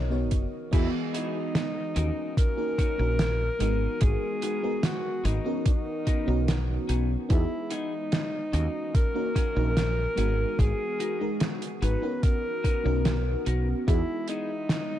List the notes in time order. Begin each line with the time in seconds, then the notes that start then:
Already playing: B1 C#3 B3 D#4 F#4 A#4
0.10 B3 C#4 D#4 F#4 C#5
0.31 F#1, kick, closed hi-hat
0.71 E2 E3 G#3 B3 E4 F#4 G#4 D#5, kick, closed hi-hat, crash
1.14 B3 D#4 E4 G#4, closed hi-hat
1.55 snare, closed hi-hat
1.96 D#2 A#3 C#4 D#4 F#4 A#4, closed hi-hat
2.37 A#4, kick, closed hi-hat
2.57 A#3 C#4 D#4 F#4 A#4
2.78 C#4 D#4 F#4 C#5, kick, closed hi-hat
2.98 A#1 A#3 C#4 D#4 F#4 A#4
3.19 snare, closed hi-hat
3.59 G#1 G#3 B3 D#4 F#4 G#4 A#4, closed hi-hat
4.01 G#1 G#4, kick, closed hi-hat
4.42 B3 D#4 F#4 G#4, closed hi-hat
4.63 G#3 B3 D#4 F#4 A#4
4.83 F#4, snare, closed hi-hat
5.25 G#1 B3 D#4 F#4 A#4, closed hi-hat
5.45 B3 C#4 D#4 F#4 A#4
5.66 D#4 A#4, kick, closed hi-hat
6.07 B3 D#4 F#4 A#4, kick, closed hi-hat
6.26 B1 B3 C#4 D#4 F#4 A#4
6.48 snare, closed hi-hat
6.89 B1 B3 D#4 F#4 G#4, closed hi-hat
7.29 E2 G#3 B3 D#4 E4 F#4 G#4, kick, closed hi-hat
7.71 B3 D#4 E4 G#4, closed hi-hat
8.12 snare, closed hi-hat
8.53 D#2 A#3 C#4 D#4 F#4 A#4, closed hi-hat
8.95 A#4, kick, closed hi-hat
9.14 A#3 C#4 D#4 F#4 A#4
9.35 C#4 D#4 F#4 G#4, kick, closed hi-hat
9.55 A#1 A#3 C#4 D#4 F#4 A#4
9.77 snare, closed hi-hat
10.15 G#1 G#3 B3 D#4 F#4 G#4 A#4, closed hi-hat
10.59 G#1 G#4, kick, closed hi-hat
11.00 B3 D#4 F#4 A#4, closed hi-hat
11.20 G#3 B3 D#4 F#4 A#4
11.40 snare, closed hi-hat
11.62 closed hi-hat
11.82 G#1 B3 D#4 F#4 G#4 B4, closed hi-hat
12.02 B3 C#4 D#4 F#4 A#4
12.23 A#4, kick, closed hi-hat
12.64 B3 D#4 F#4 A#4, kick, closed hi-hat
12.83 B1 B3 C#4 D#4 F#4 A#4
13.05 snare, closed hi-hat
13.46 B1 B3 D#4 F#4 A#4, closed hi-hat
13.87 E2 G#3 B3 D#4 E4 F#4 G#4, kick, closed hi-hat
14.28 B3 D#4 E4 G#4, closed hi-hat
14.69 snare, closed hi-hat